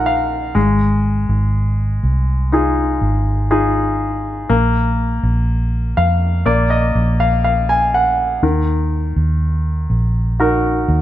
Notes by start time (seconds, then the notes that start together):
Already playing: A#1 A#3 D#4 F4 A#4 F#5 A#5
0.06 F5
0.55 G#1 G#3
1.29 G#1
2.03 C2
2.52 D#4 F4 G#4
3.01 G#1
3.51 D#4 F4 G#4
4.49 A#1 A#3
5.23 A#1
5.97 F2 F5
6.46 A#1 A#3 D5
6.70 D#5
6.95 A#1
7.20 F5
7.44 F5
7.69 G#5
7.94 F#5
8.43 D#2 D#3
9.16 D#2
9.90 A#1
10.40 D#4 F#4 A#4
10.88 D#2